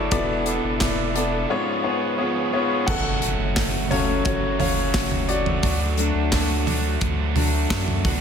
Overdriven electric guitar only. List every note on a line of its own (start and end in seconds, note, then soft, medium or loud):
0.00 0.11 A3 soft
0.00 0.12 D4 medium
0.00 0.12 E4 soft
0.00 0.11 A4 medium
0.11 0.46 E3 medium
0.11 0.46 B3 medium
0.11 0.46 D4 medium
0.11 0.44 A4 medium
0.46 0.80 B3 soft
0.46 0.81 D4 medium
0.46 0.80 A4 soft
0.80 1.15 E3 medium
0.80 1.15 B3 medium
0.80 1.15 D4 medium
0.80 1.13 A4 medium
1.15 1.49 B3 soft
1.15 1.50 D4 medium
1.15 1.49 A4 medium
1.49 1.84 C#3 medium
1.49 1.84 F3 medium
1.49 1.84 B3 medium
1.49 1.84 C#4 medium
1.49 1.82 G#4 medium
1.83 2.18 B3 soft
1.83 2.19 C#4 soft
1.83 2.18 G#4 medium
2.18 2.53 F3 medium
2.18 2.53 B3 medium
2.18 2.52 C#4 medium
2.18 2.51 G#4 medium
2.52 2.88 B3 soft
2.52 2.88 C#4 medium
2.52 2.87 G#4 medium
2.87 3.22 F#2 medium
2.87 3.22 C#3 medium
2.87 3.22 F#3 medium
2.87 3.23 A3 medium
2.87 3.21 C#4 loud
2.87 3.20 F#4 medium
3.22 3.55 F#3 soft
3.22 3.56 A3 soft
3.22 3.57 C#4 medium
3.22 3.56 F#4 medium
3.56 3.91 F#3 medium
3.56 3.91 A3 medium
3.56 3.91 C#4 medium
3.56 3.89 F#4 medium
3.91 4.25 F#3 soft
3.91 4.25 A3 medium
3.91 4.26 C#4 medium
3.91 4.25 F#4 medium
4.25 4.60 F#2 medium
4.25 4.60 C#3 medium
4.25 4.60 F#3 medium
4.25 4.60 A3 medium
4.25 4.59 C#4 medium
4.25 4.58 F#4 medium
4.59 4.93 F#3 soft
4.59 4.94 A3 soft
4.59 4.95 C#4 medium
4.59 4.94 F#4 medium
4.94 5.29 F#3 medium
4.94 5.29 A3 medium
4.94 5.28 C#4 medium
4.94 5.27 F#4 medium
5.28 5.62 F#3 medium
5.28 5.63 A3 medium
5.28 5.64 C#4 medium
5.28 5.63 F#4 medium
5.63 5.98 D3 medium
5.63 5.98 F#3 medium
5.63 5.98 A3 loud
5.63 5.98 D4 medium
5.63 5.96 F#4 loud
5.97 6.31 A3 soft
5.97 6.32 D4 soft
5.97 6.32 F#4 soft
6.31 6.66 F#3 medium
6.31 6.67 A3 medium
6.31 6.66 D4 medium
6.31 6.65 F#4 medium
6.66 7.01 A3 soft
6.66 7.01 D4 medium
6.66 7.01 F#4 medium
7.01 7.35 D3 medium
7.01 7.36 F#3 medium
7.01 7.36 A3 medium
7.01 7.35 D4 medium
7.01 7.34 F#4 medium
7.35 7.69 A3 medium
7.35 7.71 D4 soft
7.35 7.70 F#4 medium
7.69 8.04 F#3 medium
7.69 8.05 A3 medium
7.69 8.04 D4 medium
7.69 8.03 F#4 medium
8.04 8.21 B3 soft
8.04 8.21 D4 soft
8.04 8.21 F#4 medium